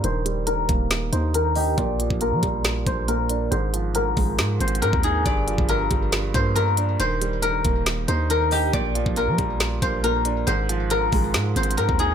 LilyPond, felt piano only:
\new Staff \with { instrumentName = "Felt piano" } { \clef bass \time 4/4 \key bes \mixolydian \tempo 4 = 138 ees8 g8 ees8 bes4 ees'8 ees8 ees''8 | bes,8 f8 bes,8 g4 bes8 bes,8 d'8 | aes,8 f8 aes,8 aes4 c'8 aes,8 ees'8 | g,8 f8 g,8 g4 bes8 g,8 d'8 |
ees8 g8 ees8 bes4 ees'8 ees8 ees''8 | bes,8 f8 bes,8 g4 bes8 bes,8 d'8 | aes,8 f8 aes,8 aes4 c'8 aes,8 ees'8 | }